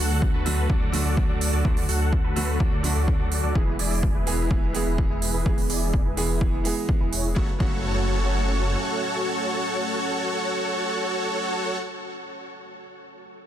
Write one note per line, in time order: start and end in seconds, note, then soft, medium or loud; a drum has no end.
0.00 0.32 D2 loud
0.00 0.42 D3 medium
0.00 0.43 F#3 medium
0.00 0.43 A3 medium
0.00 3.52 A3 medium
0.00 3.51 D4 medium
0.00 0.31 F#4 medium
0.00 0.44 F#4 medium
0.00 3.52 F#4 medium
0.00 0.31 A4 medium
0.00 3.52 D5 medium
0.00 0.31 F#5 medium
0.10 open hi-hat medium
0.22 kick loud
0.34 0.67 D2 medium
0.34 0.67 F#4 medium
0.34 0.67 A4 medium
0.34 0.67 B4 loud
0.45 0.90 D3 medium
0.45 0.91 F#3 medium
0.45 0.91 A3 medium
0.45 0.91 F#4 loud
0.45 open hi-hat loud
0.70 1.03 D2 loud
0.70 1.03 F#4 medium
0.70 1.03 A4 medium
0.70 1.03 D5 medium
0.70 kick loud
0.92 1.61 D3 medium
0.92 1.62 F#3 medium
0.92 1.62 A3 medium
0.92 1.63 F#4 loud
0.92 open hi-hat medium
1.05 1.27 D2 medium
1.05 1.26 F#4 medium
1.05 1.26 A4 medium
1.05 1.26 D5 medium
1.17 kick loud
1.29 1.51 D2 medium
1.29 1.50 F#4 medium
1.29 1.50 A4 medium
1.29 1.50 D5 loud
1.41 open hi-hat loud
1.53 1.63 D2 medium
1.53 1.63 F#4 medium
1.53 1.63 A4 medium
1.53 1.63 D5 loud
1.64 1.86 D2 medium
1.64 2.33 D3 medium
1.64 2.33 F#3 medium
1.64 2.34 A3 medium
1.64 1.85 F#4 medium
1.64 2.34 F#4 medium
1.64 1.85 A4 medium
1.64 1.85 D5 medium
1.64 kick loud
1.77 open hi-hat medium
1.89 2.22 D2 medium
1.89 2.22 F#4 medium
1.89 2.22 A4 medium
1.89 2.22 F#5 medium
1.89 open hi-hat medium
2.13 kick loud
2.24 2.58 D2 medium
2.24 2.57 F#4 medium
2.24 2.57 A4 medium
2.24 2.57 B4 loud
2.36 2.81 D3 medium
2.36 2.81 F#3 medium
2.36 2.81 A3 medium
2.36 2.81 F#4 loud
2.36 open hi-hat medium
2.60 2.94 D2 loud
2.60 2.93 F#4 medium
2.60 2.93 A4 medium
2.60 2.93 D5 medium
2.60 kick loud
2.83 3.52 D3 medium
2.83 3.52 F#3 medium
2.83 3.53 A3 medium
2.83 3.53 F#4 loud
2.83 open hi-hat medium
2.96 3.17 D2 medium
2.96 3.16 F#4 medium
2.96 3.16 A4 medium
2.96 3.16 D5 medium
3.08 kick loud
3.20 3.41 D2 medium
3.20 3.41 F#4 medium
3.20 3.41 A4 medium
3.20 3.41 D5 loud
3.32 open hi-hat loud
3.43 3.53 D2 medium
3.43 3.54 F#4 medium
3.43 3.54 A4 medium
3.43 3.54 D5 medium
3.54 3.77 E1 medium
3.54 4.23 E3 medium
3.54 4.24 G#3 medium
3.54 7.33 G#3 medium
3.54 7.33 B3 medium
3.54 4.24 B3 medium
3.54 3.76 E4 medium
3.54 7.33 E4 medium
3.54 4.25 G#4 medium
3.54 3.76 B4 medium
3.54 7.33 B4 medium
3.54 kick loud
3.79 4.13 E1 medium
3.79 4.12 E4 medium
3.79 4.12 G#4 medium
3.79 4.12 D5 medium
3.79 open hi-hat medium
3.91 open hi-hat medium
4.03 kick loud
4.15 4.48 E1 medium
4.15 4.48 E4 loud
4.15 4.48 G#4 medium
4.15 4.48 B4 loud
4.26 4.71 E3 medium
4.26 4.72 G#3 medium
4.26 4.72 B3 medium
4.26 4.72 G#4 loud
4.26 open hi-hat medium
4.51 4.84 E1 medium
4.51 4.84 E4 medium
4.51 4.84 G#4 medium
4.51 4.84 B4 medium
4.51 kick loud
4.73 5.42 E3 medium
4.73 5.43 G#3 medium
4.73 5.43 B3 medium
4.73 5.44 G#4 loud
4.73 open hi-hat medium
4.86 5.08 E1 medium
4.86 5.07 E4 medium
4.86 5.07 G#4 medium
4.86 5.07 B4 medium
4.98 kick loud
5.10 5.32 E1 medium
5.10 5.31 E4 medium
5.10 5.31 G#4 medium
5.10 5.31 B4 medium
5.22 open hi-hat loud
5.34 5.43 E1 medium
5.34 5.44 E4 medium
5.34 5.44 G#4 medium
5.34 5.44 B4 medium
5.45 5.67 E1 medium
5.45 6.14 E3 medium
5.45 6.14 G#3 medium
5.45 6.15 B3 medium
5.45 5.66 E4 medium
5.45 5.66 G#4 medium
5.45 6.15 G#4 medium
5.45 5.66 B4 medium
5.45 kick loud
5.58 open hi-hat medium
5.70 6.03 E1 loud
5.70 6.03 E4 medium
5.70 6.03 G#4 medium
5.70 6.03 D5 medium
5.70 open hi-hat medium
5.94 kick loud
6.05 6.39 E1 medium
6.05 6.38 E4 medium
6.05 6.38 G#4 medium
6.05 6.38 B4 loud
6.17 6.62 E3 medium
6.17 6.62 G#3 medium
6.17 6.62 B3 medium
6.17 6.62 G#4 medium
6.17 open hi-hat loud
6.41 6.72 E1 loud
6.41 6.74 E4 medium
6.41 6.74 G#4 medium
6.41 6.74 B4 medium
6.41 kick loud
6.64 7.33 E3 medium
6.64 7.33 G#3 medium
6.64 7.34 B3 medium
6.64 7.34 G#4 medium
6.64 open hi-hat medium
6.89 kick loud
7.01 7.10 E1 medium
7.01 7.11 E4 medium
7.01 7.11 G#4 medium
7.01 7.11 B4 medium
7.12 7.34 E1 medium
7.12 7.28 E4 medium
7.12 7.28 G#4 medium
7.12 7.28 C#5 loud
7.12 open hi-hat loud
7.35 7.50 F#1 medium
7.35 7.49 C#3 medium
7.35 7.49 F#3 medium
7.35 11.54 A3 medium
7.35 7.50 A3 medium
7.35 11.54 C#4 medium
7.35 7.50 F#4 medium
7.35 11.54 F#4 medium
7.35 7.51 F#4 medium
7.35 7.50 A4 medium
7.35 7.50 C#5 medium
7.35 11.54 C#5 medium
7.35 kick loud
7.58 8.75 F#1 medium
7.58 11.76 C#3 medium
7.58 11.77 F#3 medium
7.58 11.78 A3 medium
7.58 11.77 F#4 medium
7.58 11.79 F#4 medium
7.58 11.77 A4 medium
7.58 11.77 C#5 medium
7.58 kick loud